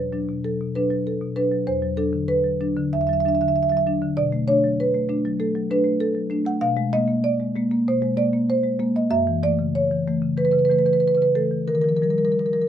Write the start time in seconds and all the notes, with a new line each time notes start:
Already playing: E2 B2 F#3 B4
0.13 F#3 D4
0.29 B2
0.44 F#3 A4
0.61 B2
0.75 F#3 D4 B4
0.90 F#3
1.07 A4
1.22 B2
1.36 F#3 D4 B4
1.51 F#3
1.67 E2 C5
1.82 F#3
1.97 F#3 D4 A4
2.13 D3
2.28 B4
2.44 F#3
2.61 F#3 D4
2.77 D3
2.93 E2 E5
3.01 E5
3.07 F#3 E5
3.13 E5
3.20 E5
3.25 F#3 D4 E5
3.35 E5
3.41 D3 E5
3.48 E5
3.56 E5
3.63 E5
3.69 F#3 E5
3.77 E5
3.87 F#3 D4
4.02 D3
4.17 B2 D5
4.32 A3
4.48 A3 D4 C#5
4.64 F#3
4.80 B4
4.94 A3
5.09 A3 D4
5.25 F#3
5.40 A3 A4
5.55 F#3
5.71 A3 D4 B4
5.84 A3
6.00 A4
6.15 F#3
6.30 A3 D4
6.45 A3 F#5
6.61 B2 F5
6.77 G#3
6.93 G#3 A#3 D#5
7.08 A#3
7.24 D5
7.40 G#3
7.56 G#3 A#3
7.71 A#3
7.88 B2 C5
8.02 G#3
8.17 G#3 A#3 D5
8.33 A#3
8.50 C5
8.64 G#3
8.79 G#3 A#3
8.96 A#3 D#5
9.11 F#2 E5
9.27 E3
9.43 E3 A3 D5
9.59 C#3
9.75 C#5
9.91 E3
10.07 E3 A3
10.22 C#3
10.37 E3 B4
10.45 B4
10.52 C#3 B4
10.59 B4
10.65 B4
10.70 E3 A3 B4
10.79 B4
10.86 E3 B4
10.93 B4
11.00 B4
11.08 B4
11.15 C#3 B4
11.22 B4
11.35 E3 A3 A4
11.51 E3
11.68 D#3 A#4
11.75 A#4
11.81 F3 A#4
11.89 A#4
11.97 A#4
12.02 F3 G3 A#4
12.10 A#4
12.18 G3 A#4
12.25 A#4
12.32 A#4
12.39 A#4
12.46 A#4
12.53 F3 A#4
12.61 A#4